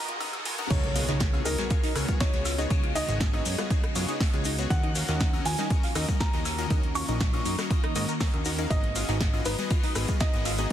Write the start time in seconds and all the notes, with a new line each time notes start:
Already playing: B2 F#3 A#3 B3 D#4 F#4 A#4 D#5 A#5, riser
0.09 F4, closed hi-hat
0.20 B3 D#4 F#4 A#4 D#5, open hi-hat, high conga, high woodblock
0.33 closed hi-hat, high woodblock
0.45 B3 F4 F#4 A#4 G#5, open hi-hat
0.58 B3 D#4 F#4 A#4 F#5, closed hi-hat, high conga
0.70 C#2 C#3 G#3 B3 D#4 F#4 G#4 C#5 D#5, kick, closed hi-hat, crash, ride, impact, high conga, maracas
0.84 closed hi-hat, ride
0.95 B3 F4 F#4 G#4 D#5 F5, open hi-hat, ride, maracas
1.08 C#2 B3 D#4 F#4 G#4 C#5 D#5, snare, closed hi-hat, maracas
1.20 kick, snare, closed hi-hat, maracas
1.33 B3 F4 F#4 G#4 C#5 F5, high conga, high woodblock
1.45 C#2 D#4 A#4 D#5, open hi-hat, ride, maracas
1.58 B3 F#4 G#4 C#5, snare, closed hi-hat, low conga, maracas
1.70 B3 F4 G#4 C#5 F5, kick, closed hi-hat, ride, maracas
1.83 D#4 D#5, snare, open hi-hat
1.95 C#2 B3 F#4 G#4 C#5, cross-stick, open hi-hat, ride, high woodblock, maracas
2.08 B3 F4 F#4 G#4 C#5 F5, kick, closed hi-hat, low conga, maracas
2.20 D#4 C#5 D#5, kick, snare, closed hi-hat, ride, maracas
2.33 C#2 B3 F#4 G#4 C#5, snare, closed hi-hat
2.45 F4 F5, snare, open hi-hat, ride, high woodblock, maracas
2.58 B3 D#4 F#4 G#4 C#5 D#5, closed hi-hat, maracas
2.70 C#2 B3 C#4 F#4 G#4 C#5, kick, closed hi-hat, ride, high conga, maracas
2.83 F4 F5, closed hi-hat
2.95 B3 D#4 F#4 G#4 D#5, open hi-hat, ride, maracas
3.08 G#1 B3 F#4 G#4 C#5, closed hi-hat, maracas
3.20 F4 F5, kick, snare, closed hi-hat, low conga, maracas
3.33 B3 D#4 F#4 G#4 C#5 D#5, ride, high conga, high woodblock
3.45 F#2, open hi-hat, ride, maracas
3.58 B3 F4 F#4 G#4 C#5 F5, cross-stick, snare, closed hi-hat, low conga, maracas
3.70 B3 D#4 F#4 G#4 C#5 D#5, kick, closed hi-hat, ride, maracas
3.84 cross-stick, closed hi-hat
3.95 F#2 B3 F4 F#4 G#4 C#5 F5, open hi-hat, ride, maracas
4.08 B3 D#4 F#4 G#4 C#5 D#5, closed hi-hat, maracas
4.20 kick, snare, open hi-hat, ride, high woodblock, maracas
4.33 C#2 B3 F4 F#4 G#4 C#5 F5, closed hi-hat
4.44 D#4 D#5, open hi-hat, ride, maracas
4.58 B3 F#4 G#4 C#5, closed hi-hat, maracas
4.70 D#2 D#3 A#3 C#4 F4 F#4 A#4 F5 F#5, kick, closed hi-hat, ride, high conga, maracas
4.83 D#4 D#5, closed hi-hat, ride
4.95 C#4 F#4 A#4 F5, open hi-hat, ride, maracas
5.08 D#2 C#4 F4 F#4 A#4 D#5 F5, snare, closed hi-hat, maracas
5.20 D#4 D#5, kick, snare, closed hi-hat, ride, maracas
5.33 C#4 F#4 A#4 D#5, high conga, high woodblock
5.45 D#2 F4 F5 G#5, open hi-hat, ride, maracas
5.58 C#4 D#4 F#4 A#4 D#5, snare, closed hi-hat, low conga, maracas
5.70 C#4 F#4 A#4 D#5, kick, closed hi-hat, ride, maracas
5.83 F4 F5, snare, open hi-hat
5.95 D#2 C#4 D#4 F#4 A#4 D#5, cross-stick, open hi-hat, ride, high woodblock, maracas
6.08 C#4 F#4 A#4 D#5, kick, closed hi-hat, low conga, maracas
6.20 F4 F5 A#5, kick, snare, closed hi-hat, ride, maracas
6.33 D#2 C#4 D#4 F#4 A#4 D#5, snare, closed hi-hat
6.45 snare, open hi-hat, ride, high woodblock, maracas
6.58 C#4 F4 F#4 A#4 D#5 F5, closed hi-hat, maracas
6.70 D#2 C#4 D#4 F#4 A#4 D#5, kick, closed hi-hat, ride, high conga, maracas
6.83 closed hi-hat
6.95 C#4 F4 F#4 A#4 F5 C#6, open hi-hat, ride, maracas
7.08 A#1 C#4 D#4 F#4 A#4 D#5, maracas
7.20 kick, snare, closed hi-hat, ride, low conga, maracas
7.33 C#4 F4 F#4 A#4 D#5 F5, closed hi-hat, ride, high conga, high woodblock
7.45 F#2 D#4 D#5, open hi-hat, ride, maracas
7.58 C#4 F#4 A#4 D#5, cross-stick, snare, closed hi-hat, low conga, maracas
7.70 C#4 F4 F#4 A#4 D#5 F5, kick, closed hi-hat, ride, maracas
7.84 D#4 D#5, cross-stick, closed hi-hat
7.95 G#2 C#4 F#4 A#4 D#5 D#6, open hi-hat, ride, maracas
8.09 A#4 A#5, closed hi-hat, maracas
8.20 C#4 F#4 A#4 D#5 A#5, kick, snare, open hi-hat, ride, high woodblock, maracas
8.34 D#2, closed hi-hat, high conga, high woodblock
8.45 C#4 D#4 F#4 A#4 D#5 F#5, open hi-hat, ride, maracas
8.58 C#4 D#4 F#4 A#4 D#5 F5, closed hi-hat, maracas
8.70 G#1 G#3 B3 D#4 F#4 G#4 B4 D#5, kick, closed hi-hat, ride, high conga, maracas
8.83 closed hi-hat, ride
8.95 B3 F4 F#4 G#4 F5, open hi-hat, ride, maracas
9.09 G#1 B3 D#4 F#4 G#4 D#5, snare, closed hi-hat, maracas
9.20 kick, snare, closed hi-hat, ride, maracas
9.34 B3 F4 F#4 G#4 D#5 F5, high conga, high woodblock
9.45 G#1 D#4 B4 D#5, open hi-hat, ride, maracas
9.59 B3 F#4 G#4 D#5, snare, closed hi-hat, low conga, maracas
9.70 B3 F4 F#4 G#4 D#5 F5, kick, closed hi-hat, ride, maracas
9.83 D#4 D#5, snare, open hi-hat
9.95 G#1 B3 F#4 G#4 D#5, cross-stick, open hi-hat, ride, high woodblock, maracas
10.08 B3 F4 F#4 G#4 D#5 F5, kick, closed hi-hat, low conga, maracas
10.20 D#4 D#5, kick, snare, closed hi-hat, ride, maracas
10.34 G#1 B3 F#4 G#4 D#5, snare, closed hi-hat
10.45 F4 F5, snare, open hi-hat, ride, high woodblock, maracas
10.58 B3 D#4 F#4 G#4 D#5, closed hi-hat, maracas